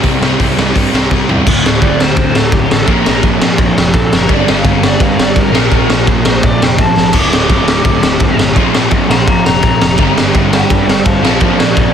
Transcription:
0.02 picked electric bass C2, overdriven electric guitar C3 G3 C4, kick, open hi-hat
0.20 picked electric bass C2, overdriven electric guitar C3 G3 C4, snare
0.39 picked electric bass C2, overdriven electric guitar C3 G3 C4, kick, open hi-hat
0.56 picked electric bass C2, overdriven electric guitar C3 G3 C4, snare
0.74 picked electric bass G2, overdriven electric guitar C3 G3 C4, kick, open hi-hat
0.92 picked electric bass C2, overdriven electric guitar C3 G3 C4, snare
1.10 picked electric bass C2, overdriven electric guitar C3 G3 C4, kick, snare
1.28 picked electric bass E2, overdriven electric guitar C3 G3 C4, floor tom
1.46 picked electric bass D1, overdriven electric guitar D2 A2 D3, kick, crash
1.66 picked electric bass D1, snare
1.82 picked electric bass D1, lead electric guitar D5, kick, ride
2.00 lead electric guitar C5, snare
2.16 picked electric bass D2, kick, ride
2.35 picked electric bass D1, lead electric guitar A4, snare
2.52 picked electric bass D1, lead electric guitar G4, kick, ride
2.71 picked electric bass A1, lead electric guitar A4, snare
2.86 picked electric bass A#1, overdriven electric guitar A#2 F3, lead electric guitar A#4, kick, ride
2.90 overdriven electric guitar A#3
3.06 picked electric bass A#1, snare
3.23 picked electric bass A#1, kick, ride
3.42 picked electric bass A#1, snare
3.58 picked electric bass A#1, kick, ride
3.77 picked electric bass F1, snare
3.94 picked electric bass A#1, lead electric guitar A4, kick, ride
4.13 picked electric bass F#1, lead electric guitar A#4, snare
4.27 picked electric bass G1, overdriven electric guitar G2 D3 G3, kick, ride
4.32 lead electric guitar D5
4.48 picked electric bass G1, lead electric guitar F5, snare
4.65 picked electric bass G1, kick, ride
4.83 lead electric guitar D5, snare
5.00 picked electric bass G2, lead electric guitar F5, kick, ride
5.18 picked electric bass G1, snare
5.22 lead electric guitar D5
5.36 picked electric bass G1, kick, ride
5.40 lead electric guitar A#4
5.52 picked electric bass A#1, overdriven electric guitar A#2 F3 A#3, snare
5.71 picked electric bass A#1, kick, ride
5.89 picked electric bass A#1, snare
6.07 picked electric bass A#1, kick, ride
6.25 picked electric bass A#1, lead electric guitar C5, snare
6.43 picked electric bass A#1, lead electric guitar D5, kick, ride
6.61 picked electric bass F1, lead electric guitar G5, snare
6.78 picked electric bass A#1, lead electric guitar A5, kick, ride
6.97 picked electric bass A#1, snare
7.11 picked electric bass D1, overdriven electric guitar D2 A2 D3, kick, splash, crash
7.16 lead electric guitar D6
7.32 picked electric bass D1, lead electric guitar D6, snare
7.50 picked electric bass D1, kick, ride
7.68 snare
7.85 picked electric bass D2, kick, ride
8.01 picked electric bass D1, snare
8.20 picked electric bass D1, kick, ride
8.37 picked electric bass G1, snare
8.54 picked electric bass A#1, overdriven electric guitar A#2 F3, kick, ride
8.59 overdriven electric guitar A#3
8.73 picked electric bass A#1, snare
8.91 picked electric bass A#1, kick, ride
9.10 picked electric bass A#1, lead electric guitar G5 C6, snare
9.26 picked electric bass A#1, lead electric guitar F5 A#5, kick, ride
9.45 picked electric bass F1, lead electric guitar A#5, snare
9.62 picked electric bass A#1, kick, ride
9.82 picked electric bass F1, snare
9.97 picked electric bass G1, overdriven electric guitar G2 D3 G3, kick, ride
10.17 picked electric bass G1, snare
10.35 picked electric bass G1, kick, ride
10.53 lead electric guitar D5 G5, snare
10.70 picked electric bass G2, lead electric guitar D5 G5, kick, ride
10.87 picked electric bass G1, lead electric guitar D5 G5, snare
11.04 picked electric bass G1, lead electric guitar C5 F5, kick, ride
11.22 picked electric bass A#1, overdriven electric guitar A#2 F3, lead electric guitar C5 F5, snare
11.26 overdriven electric guitar A#3
11.38 picked electric bass A#1, lead electric guitar C5 F5, kick, ride
11.58 picked electric bass A#1, lead electric guitar A#4 D5, snare
11.77 picked electric bass A#1, lead electric guitar A#4 D5, kick, ride

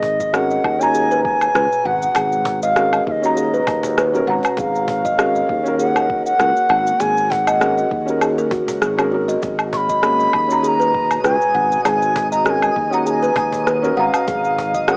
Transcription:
Already playing: fretless electric bass G#1, ambient pad B2 G#3 F#4, bansuri D#5
0.03 cajon bass
0.20 kalimba D#5, kick, shaker
0.33 felt piano C#4 F#4 A#4, kalimba G#4, bansuri F#5, cross-stick, shaker
0.51 kalimba D#5, shaker
0.64 fretless electric bass D#2, kick, low woodblock
0.79 felt piano C#4 F#4 A#5, bansuri G#5, shaker
0.94 kalimba G#4, shaker
1.11 kalimba B4, shaker
1.24 bansuri G#5, kick
1.41 low woodblock, shaker
1.55 fretless electric bass C#2, kalimba B4, cross-stick, shaker
1.72 shaker
1.85 fretless electric bass G#1, bansuri F#5, kalimba F#5
2.02 shaker
2.15 fretless electric bass G#1, kalimba G#4, cajon slap, low woodblock, shaker
2.32 shaker
2.45 cajon bass, cajon slap
2.62 kalimba D#5, bansuri F5, shaker
2.75 felt piano C#4 F#4 A#4, kalimba G#4, cross-stick, shaker
2.93 kalimba D#5, low woodblock, shaker
3.07 fretless electric bass D#2, bansuri F5, kick
3.11 bansuri D#5
3.22 felt piano C#4 F#4 A#5, shaker
3.37 kalimba G#4, shaker
3.54 kalimba B4, shaker
3.67 fretless electric bass D#2, cajon bass, kick, low woodblock
3.83 cajon bass, shaker
3.98 kalimba B4, cross-stick, shaker
4.13 felt piano C#4 F#4 A#4, shaker
4.26 fretless electric bass G#1, felt piano C#4 F#4 A#5, kalimba F#5
4.43 cajon slap, low woodblock, shaker
4.57 fretless electric bass G#1, ambient pad D#3 A#3, kalimba G#4, bansuri F5, kick, cajon slap, shaker
4.75 shaker
4.88 cajon bass
5.05 kalimba D#5, kick, shaker
5.17 felt piano C#4 F#4 A#4, kalimba G#4, cross-stick, low woodblock, shaker
5.35 kalimba D#5, shaker
5.49 fretless electric bass D#2, kick
5.63 felt piano C#4 F#4, shaker
5.68 felt piano A#4
5.79 kalimba G#4, bansuri F#5, shaker
5.96 kalimba A#4, low woodblock, shaker
6.10 kick
6.26 bansuri F#5, shaker
6.39 fretless electric bass C#2, kalimba A#4, cross-stick, shaker
6.56 shaker
6.69 fretless electric bass G#1, kalimba F#5, low woodblock
6.87 shaker
7.00 fretless electric bass G#1, kalimba G#4, bansuri G#5, cajon slap, shaker
7.17 shaker
7.30 bansuri F#5, cajon bass, cajon slap
7.47 kalimba D#5, low woodblock, shaker
7.60 felt piano C#4 F#4 A#4, kalimba G#4, cross-stick, shaker
7.77 kalimba D#5, shaker
7.91 fretless electric bass D#2, kick
8.06 felt piano C#4 F#4 A#4, shaker
8.21 kalimba G#4, low woodblock, shaker
8.38 kalimba A#4, shaker
8.51 kalimba F#4, cajon bass, kick
8.68 fretless electric bass C#2, cajon bass, shaker
8.82 fretless electric bass G#1, kalimba G#4, cross-stick, shaker
8.97 felt piano C#4 F#4 A#4, kalimba G#4, low woodblock, shaker
9.10 felt piano C#4 F#4 A#4, kalimba F#4
9.28 kalimba D#5, cajon slap, shaker
9.42 fretless electric bass G#1, ambient pad B2 G#3, kalimba G#4, synth texture D#5, kick, cajon slap, shaker
9.59 low woodblock, shaker
9.73 bansuri C#6, cajon bass
9.77 bansuri B5
9.90 kalimba D#5, kick, shaker
10.02 felt piano A#3 C#4 F#4, kalimba G#4, cross-stick, shaker
10.19 kalimba D#5, shaker
10.33 fretless electric bass D#2, kick, low woodblock
10.48 felt piano C#4 F#4, shaker
10.52 felt piano A#5
10.63 kalimba G#4, bansuri B5, shaker
10.68 bansuri A#5
10.80 kalimba B4, shaker
10.94 kick
11.11 low woodblock, shaker
11.24 fretless electric bass C#2, kalimba B4, bansuri G#5, cross-stick, shaker
11.41 shaker
11.54 fretless electric bass G#1, kalimba F#5
11.72 shaker
11.85 fretless electric bass G#1, kalimba G#4, bansuri G#5 A#5, cajon slap, low woodblock, shaker
12.02 shaker
12.16 cajon bass, cajon slap
12.32 kalimba D#5, bansuri A#5, shaker
12.45 felt piano C#4 F#4 A#4, kalimba G#4, bansuri A#5, cross-stick, shaker
12.50 bansuri G#5
12.62 kalimba D#5, low woodblock, shaker
12.76 fretless electric bass D#2, kick
12.90 felt piano C#4 F#4 A#5, bansuri F#5, shaker
13.06 kalimba G#4, bansuri G#5 A#5, shaker
13.23 kalimba B4, shaker
13.36 fretless electric bass D#2, cajon bass, kick, low woodblock
13.52 cajon bass, shaker
13.67 kalimba B4, cross-stick, shaker
13.82 felt piano C#4 F#4 A#4, shaker
13.96 fretless electric bass G#1, felt piano C#4 F#4 A#5, bansuri F5, kalimba F#5
14.14 cajon slap, low woodblock, shaker
14.27 fretless electric bass G#1, ambient pad D#3 A#3 F#4, kalimba G#4, kick, cajon slap, shaker
14.44 shaker
14.59 cajon bass
14.74 kalimba D#5, kick, shaker
14.87 felt piano C#4 F#4 A#4, kalimba G#4, bansuri F#5, cross-stick, low woodblock, shaker

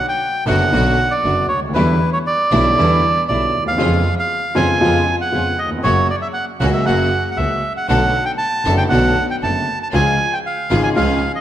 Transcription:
0.09 bandoneon G5
0.46 grand piano F#1 F#2 D3 F#3 B3 F#4, double bass F#1, string section B3 D4 F#4, bandoneon F#5
0.72 double bass B1, grand piano B1 B2 D3 F#3 B3 F#4, string section B3 D4 F#4
1.11 bandoneon D5
1.23 double bass F#1, grand piano F#1 F#2 D3 F#3 B3 F#4, string section B3 D4 F#4
1.48 double bass D2, bandoneon C#5
1.57 grand piano C#2
1.63 grand piano D2
1.69 grand piano D#2
1.74 double bass E2, grand piano E2 D3 E3 G3 B3 E4, string section G3 D4 E4, bandoneon B4
2.13 bandoneon C#5
2.27 bandoneon D5
2.51 double bass B1, grand piano B1 B2 D3 G3 B3 E4, string section G3 D4 E4
2.77 double bass E2, grand piano E2 D3 E3 G3 B3 E4, string section G3 D4 E4
3.28 double bass B1, grand piano B1 B2 D3 G3 B3 E4, string section G3 D4 E4, bandoneon D5
3.55 double bass D#2
3.60 grand piano D2
3.66 grand piano D#2, bandoneon F5
3.72 grand piano E2
3.78 grand piano F2 C#3 F3 G#3 B3 F4, double bass F2, string section B3 C#4 F4
4.19 bandoneon F5
4.55 grand piano F2 C#3 F3 G#3 B3 F4, double bass F2, string section B3 C#4 F4, bandoneon G#5
4.80 grand piano F2 C#3 F3 G#3 B3 F4, double bass F2, string section B3 C#4 F4
5.21 bandoneon F#5
5.32 grand piano F2 C#3 F3 G#3 B3 F4, double bass F2, string section B3 C#4 F4
5.59 bandoneon D#5
5.65 grand piano D#2
5.71 grand piano E2
5.78 grand piano F2
5.83 double bass F#1, grand piano F#2 C#3 F#3 A#3 F#4, string section A#3 C#4 F#4, bandoneon C#5
6.10 bandoneon D5
6.22 bandoneon E5
6.33 bandoneon F#5
6.60 double bass C#2, grand piano C#2 C#3 F#3 A#3 F#4, string section A#3 C#4 F#4, bandoneon F#5
6.73 bandoneon E5
6.85 double bass F#1, grand piano F#2 C#3 F#3 A#3 F#4, string section A#3 C#4 F#4, bandoneon F#5
7.31 bandoneon F#5
7.37 grand piano C#2 C#3 F#3 A#3 F#4, double bass C#2, string section A#3 C#4 F#4, bandoneon E5
7.77 bandoneon F#5
7.88 double bass B1, grand piano B1 B2 D3 A3 B3 F#4, string section B3 D4 A4, bandoneon F#5
8.25 bandoneon G5
8.38 bandoneon A5
8.65 double bass F#1, grand piano F#1 F#2 D3 A3 B3 F#4, string section B3 D4 A4
8.77 bandoneon G5
8.89 double bass B1, grand piano B1 B2 D3 A3 B3 F#4, string section B3 D4 A4, bandoneon F#5
9.30 bandoneon G5
9.42 double bass F#1, grand piano F#1 F#2 D3 A3 B3 F#4, string section B3 D4 A4, bandoneon A5
9.83 bandoneon A5
9.92 grand piano C#2 C#3 F3 G#3 F4, double bass C#2, string section C#4 F4 G#4, bandoneon G#5
10.33 bandoneon G5
10.46 bandoneon F5
10.70 double bass G#1, grand piano G#1 G#2 C#3 F3 G#3 F4, string section C#4 F4 G#4
10.83 bandoneon G#5
10.96 grand piano C#2 C#3 F3 G#3 F4, double bass C#2, string section C#4 F4 G#4, bandoneon F5
11.35 bandoneon D#5

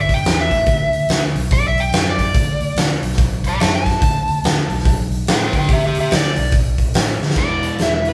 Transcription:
Already playing: fingered electric bass G1
0.01 electric slide guitar E5
0.09 kick, open hi-hat
0.14 electric slide guitar G5
0.25 fingered electric bass E2, snare, open hi-hat
0.41 electric slide guitar E5
0.51 fingered electric bass A2, kick, open hi-hat
0.66 fingered electric bass D2, kick, open hi-hat
0.92 fingered electric bass D2, open hi-hat
1.09 fingered electric bass D2, snare, open hi-hat
1.34 fingered electric bass B1, open hi-hat
1.51 electric slide guitar D5, kick, open hi-hat
1.68 electric slide guitar E5
1.78 electric slide guitar G5, open hi-hat
1.91 fingered electric bass F#2, snare, open hi-hat
2.10 electric slide guitar D5
2.19 kick, open hi-hat
2.34 fingered electric bass D2, kick, open hi-hat
2.60 fingered electric bass D2, open hi-hat
2.75 fingered electric bass D2, snare, open hi-hat
3.02 fingered electric bass B1, open hi-hat
3.12 snare
3.18 kick, open hi-hat
3.44 electric slide guitar D5, kick, open hi-hat
3.49 electric slide guitar B5
3.60 fingered electric bass F#2, electric slide guitar E5 A5, snare, open hi-hat
3.75 electric slide guitar A5
3.86 kick, snare, open hi-hat
4.02 fingered electric bass D2, kick, open hi-hat
4.28 fingered electric bass D2, open hi-hat
4.43 fingered electric bass D2, snare, open hi-hat
4.69 fingered electric bass B1, open hi-hat
4.78 snare
4.85 kick, open hi-hat
5.12 open hi-hat
5.27 fingered electric bass A2, electric slide guitar B4 G5, snare, open hi-hat
5.42 electric slide guitar B4 G5
5.53 fingered electric bass D3, electric slide guitar B4, kick, open hi-hat
5.59 electric slide guitar G5
5.69 fingered electric bass D2, electric slide guitar G4, kick, open hi-hat
5.73 electric slide guitar E5
5.86 electric slide guitar G4 E5
5.95 fingered electric bass D2, open hi-hat
6.00 electric slide guitar G4 E5
6.11 fingered electric bass D2, snare, open hi-hat
6.15 electric slide guitar D5
6.36 fingered electric bass B1, open hi-hat
6.51 kick, open hi-hat
6.78 kick, open hi-hat
6.94 fingered electric bass A2, snare, open hi-hat
7.19 fingered electric bass D3, snare
7.30 snare
7.36 fingered electric bass E1, overdriven electric guitar E3 G#3 B3 E4 G#4, electric slide guitar D5, kick, crash
7.63 closed hi-hat
7.77 fingered electric bass E1, snare, closed hi-hat
7.83 electric slide guitar E5
7.95 electric slide guitar E5
8.05 electric slide guitar B4, closed hi-hat

